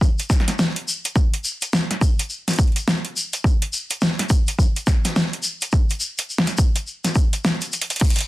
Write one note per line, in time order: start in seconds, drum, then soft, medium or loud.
0.01 kick medium
0.01 shaker medium
0.19 closed hi-hat soft
0.19 shaker soft
0.30 kick loud
0.30 snare soft
0.30 shaker loud
0.40 snare soft
0.48 snare soft
0.48 closed hi-hat medium
0.48 shaker soft
0.49 snare soft
0.59 snare loud
0.59 shaker medium
0.76 closed hi-hat soft
0.88 shaker loud
1.05 closed hi-hat medium
1.05 shaker soft
1.16 kick loud
1.16 shaker medium
1.34 closed hi-hat soft
1.45 shaker medium
1.62 closed hi-hat medium
1.62 shaker soft
1.73 snare loud
1.73 shaker medium
1.91 snare soft
1.91 closed hi-hat soft
2.01 kick loud
2.01 shaker medium
2.19 closed hi-hat medium
2.19 shaker soft
2.30 shaker soft
2.48 snare soft
2.48 closed hi-hat soft
2.48 shaker soft
2.51 closed hi-hat soft
2.53 closed hi-hat soft
2.56 kick loud
2.56 closed hi-hat soft
2.56 shaker medium
2.63 closed hi-hat soft
2.67 closed hi-hat soft
2.72 closed hi-hat soft
2.76 closed hi-hat medium
2.76 shaker soft
2.88 snare loud
2.88 snare soft
2.88 shaker soft
3.05 closed hi-hat soft
3.17 shaker medium
3.33 closed hi-hat medium
3.33 shaker soft
3.44 kick loud
3.44 shaker soft
3.62 closed hi-hat medium
3.73 shaker medium
3.90 closed hi-hat medium
3.90 shaker soft
4.01 snare loud
4.01 shaker soft
4.19 snare soft
4.19 closed hi-hat medium
4.29 kick loud
4.29 shaker loud
4.47 closed hi-hat medium
4.47 shaker soft
4.59 kick medium
4.59 shaker medium
4.76 closed hi-hat soft
4.76 shaker soft
4.87 kick loud
4.87 snare medium
4.87 shaker medium
5.05 snare soft
5.05 closed hi-hat medium
5.05 shaker soft
5.16 snare loud
5.16 shaker soft
5.33 closed hi-hat soft
5.43 shaker medium
5.61 closed hi-hat medium
5.61 shaker soft
5.72 kick loud
5.72 shaker medium
5.89 closed hi-hat medium
5.89 shaker soft
6.00 shaker medium
6.18 closed hi-hat medium
6.18 shaker soft
6.30 shaker medium
6.38 snare loud
6.47 snare soft
6.47 closed hi-hat medium
6.47 shaker soft
6.58 kick loud
6.58 shaker loud
6.75 closed hi-hat medium
6.75 shaker soft
6.87 shaker medium
7.05 snare soft
7.05 closed hi-hat soft
7.05 shaker soft
7.15 kick loud
7.15 shaker medium
7.33 closed hi-hat medium
7.33 shaker soft
7.45 snare loud
7.45 snare soft
7.45 shaker medium
7.61 closed hi-hat soft
7.61 shaker soft
7.72 closed hi-hat medium
7.72 shaker medium
7.81 closed hi-hat medium
7.90 closed hi-hat medium
7.90 shaker soft
7.96 closed hi-hat soft
8.00 kick loud
8.00 closed hi-hat soft
8.00 crash medium
8.00 shaker medium
8.04 closed hi-hat medium
8.10 closed hi-hat medium
8.16 closed hi-hat medium
8.19 closed hi-hat medium
8.20 closed hi-hat medium